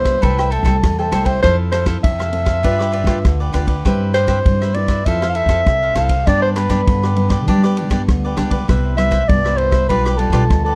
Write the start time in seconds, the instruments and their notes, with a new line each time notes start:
Already playing: upright bass C2, nylon-string guitar G2 G3 B3 E4, soprano saxophone C5
0.05 cavaquinho B4 C5 E5, kick, cross-stick, ride
0.22 upright bass C2, nylon-string guitar C3 G3 A3 E4, cavaquinho A4 C5 E5 G5, soprano saxophone B4, kick, ride
0.38 cavaquinho C5 E5 G5, cross-stick
0.50 cavaquinho A4 C5 E5 G5, soprano saxophone A4, ride
0.63 upright bass C2, nylon-string guitar G3 A3 E4, cavaquinho A4 C5 E5 G5, kick, cross-stick, ride
0.83 upright bass E2, nylon-string guitar C3, kick, cross-stick, ride
0.99 soprano saxophone A4, cavaquinho C5 E5 G5
1.12 upright bass C2, nylon-string guitar G3 A3 E4, cavaquinho A4 C5 E5 G5, cross-stick, ride
1.25 soprano saxophone C5, cavaquinho C5 E5 G5, kick, ride
1.43 upright bass F2, nylon-string guitar F3 C4 E4 A4, cavaquinho E4 A4 C5 F5, soprano saxophone C5, kick, cross-stick, ride
1.72 cavaquinho E4 A4 C5 F5, soprano saxophone C5, cross-stick, ride
1.86 nylon-string guitar C4 E4 A4, cavaquinho E4 A4 C5 F5, kick, cross-stick, ride
2.04 upright bass F2, nylon-string guitar C3, soprano saxophone E5, kick, ride
2.19 cavaquinho A4 C5 F5, cross-stick
2.32 nylon-string guitar C4 E4 A4, ride
2.46 cavaquinho A4 C5 F5, kick, cross-stick, ride
2.63 upright bass G2, nylon-string guitar G3 D4 F4 B4, cavaquinho F4 G4 B4 D5, kick, ride
2.79 cavaquinho G4 B4 D5, cross-stick
2.92 cavaquinho F4 G4 B4 D5, ride
3.04 upright bass G2, nylon-string guitar D4 F4 B4, cavaquinho F4 G4 B4 D5, kick, cross-stick, ride
3.25 upright bass D2, nylon-string guitar D3, kick, cross-stick, ride
3.40 cavaquinho G4 B4 D5
3.53 upright bass D2, nylon-string guitar D4 F4 B4, cavaquinho F4 G4 B4 D5, cross-stick, ride
3.67 cavaquinho G4 B4 D5, kick, ride
3.85 upright bass G2, nylon-string guitar G3 C4 E4 B4, cavaquinho G4 B4 C5 E5, kick, cross-stick, ride
4.14 cavaquinho G4 B4 C5 E5, soprano saxophone C5, cross-stick, ride
4.27 nylon-string guitar C4 E4, cavaquinho G4 B4 C5 E5, kick, cross-stick, ride
4.46 upright bass G2, nylon-string guitar G3, kick, ride
4.62 cavaquinho B4 C5 E5, cross-stick
4.74 nylon-string guitar C4 E4 B4, soprano saxophone D5, ride
4.88 cavaquinho B4 C5 E5, kick, cross-stick, ride
5.06 upright bass F2, nylon-string guitar F3 C4 E4 A4, cavaquinho E4 A4 C5 F5, soprano saxophone E5, kick, ride
5.22 cavaquinho A4 C5 F5, cross-stick
5.29 soprano saxophone F5
5.35 cavaquinho E4 A4 C5 F5, soprano saxophone E5, ride
5.46 upright bass F2, nylon-string guitar C4 E4 A4, cavaquinho E4 A4 C5 F5, kick, cross-stick, ride
5.66 upright bass C2, nylon-string guitar C3, kick, cross-stick, ride
5.83 cavaquinho A4 C5 F5
5.95 upright bass C2, nylon-string guitar C4 E4 A4, cavaquinho E4 A4 C5 F5, soprano saxophone F5, cross-stick, ride
6.09 cavaquinho A4 C5 F5, kick, ride
6.27 nylon-string guitar G2 G3 B3 D4, upright bass G2, cavaquinho D4 G4 B4 D5, soprano saxophone D5, kick, cross-stick, ride
6.43 soprano saxophone C5
6.55 cavaquinho D4 G4 B4 D5, soprano saxophone B4, cross-stick, ride
6.69 nylon-string guitar G3 B3 D4, cavaquinho D4 G4 B4 D5, kick, cross-stick, ride
6.87 upright bass G2, nylon-string guitar D3, kick, ride
7.03 cavaquinho G4 B4 D5, cross-stick
7.16 nylon-string guitar G3 B3 D4, ride
7.29 cavaquinho G4 B4 D5, kick, cross-stick, ride
7.47 nylon-string guitar G2 G3 B3 D4, upright bass G3, cavaquinho D4 G4 B4 D5, kick, ride
7.64 cavaquinho G4 B4 D5, cross-stick
7.77 cavaquinho D4 G4 B4 D5, ride
7.88 upright bass G2, nylon-string guitar G3 B3 D4, cavaquinho D4 G4 B4 D5, kick, cross-stick, ride
8.08 upright bass D2, nylon-string guitar D3, kick, cross-stick, ride
8.25 cavaquinho G4 B4 D5
8.37 upright bass C#2, nylon-string guitar G3 B3 D4, cavaquinho D4 G4 B4 D5, cross-stick, ride
8.51 cavaquinho G4 B4 D5, kick, ride
8.68 upright bass C2, nylon-string guitar C3 G3 B3 E4, cavaquinho E4 B4 C5 E5, kick, cross-stick, ride
8.97 nylon-string guitar G3 B3 E4, cavaquinho E4 B4 C5 E5, soprano saxophone E5, cross-stick, ride
9.11 cavaquinho E4 B4 C5 E5, kick, cross-stick, ride
9.28 upright bass C2, nylon-string guitar G2 G3 B3 E4, soprano saxophone D5, kick, ride
9.45 nylon-string guitar G3 B3 E4, cavaquinho B4 C5 E5, cross-stick
9.57 soprano saxophone C5, ride
9.71 cavaquinho B4 C5 E5, kick, cross-stick, ride
9.89 upright bass B1, nylon-string guitar B2 G3 D4 F4, cavaquinho F4 G4 B4 D5, soprano saxophone B4, kick, ride
10.05 cavaquinho G4 B4 D5, cross-stick
10.13 soprano saxophone B4
10.17 nylon-string guitar G3 D4 F4, cavaquinho F4 G4 B4 D5, soprano saxophone A4, ride
10.30 upright bass B1, nylon-string guitar G3 D4 F4, cavaquinho F4 G4 B4 D5, kick, cross-stick, ride
10.50 upright bass D2, nylon-string guitar B2, kick, cross-stick, ride
10.65 cavaquinho G4 B4 D5, soprano saxophone A4